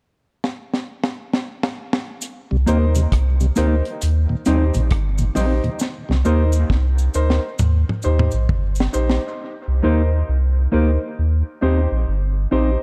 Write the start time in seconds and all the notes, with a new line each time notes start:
0.44 snare
0.74 snare
1.04 snare
1.33 snare
1.63 snare
1.93 snare
2.21 closed hi-hat, cabasa
2.51 C2 C3 G3
2.66 D#2 A#3 C4 D#4 G4 A#4 C5, closed hi-hat, cabasa
2.95 C3 G3, closed hi-hat, cabasa
3.12 C2, kick, cross-stick, closed hi-hat
3.40 C3 G3, cabasa
3.56 D2 A#3 C4 D#4 G4 A#4 C5, closed hi-hat, cabasa
3.85 closed hi-hat
4.01 D#2, closed hi-hat, cabasa
4.29 D#2 A#2
4.45 D#2 G3 C4 D#4 G4 C5, closed hi-hat, cabasa
4.74 A#1 D#2 A#2, closed hi-hat, cabasa
4.91 G1, kick, cross-stick, closed hi-hat
5.18 D#2 A#2, cabasa
5.35 A#1 G3 C4 D#4 G4 C5, open hi-hat, cabasa
5.64 D#2 A#2, closed hi-hat
5.79 snare, cabasa
6.09 C2 C3 G3, snare
6.25 D#2 A#3 D#4 G4 A#4 C5, cabasa
6.52 cabasa
6.70 C2, kick, snare
6.98 cabasa
7.14 D2 D#4 A#4 C5, cabasa
7.30 snare
7.59 D#2, mid tom, cabasa
7.89 mid tom
8.02 D#2 D#4 G4 C5, cabasa
8.19 mid tom
8.31 A#1, cabasa
8.49 G1, kick, floor tom
8.75 cabasa
8.80 snare
8.93 A#1 D#4 G4 C5, cabasa
9.10 snare
9.68 C2
9.82 D#2 A#3 D#4 G4 A#4 C5
10.29 C2
10.72 D2 A#3 D#4 G4 A#4 C5
11.19 D#2
11.61 D#2 C4 D#4 G4 C5
11.92 A#1
12.08 G1
12.51 A#1 C4 D#4 G4 C5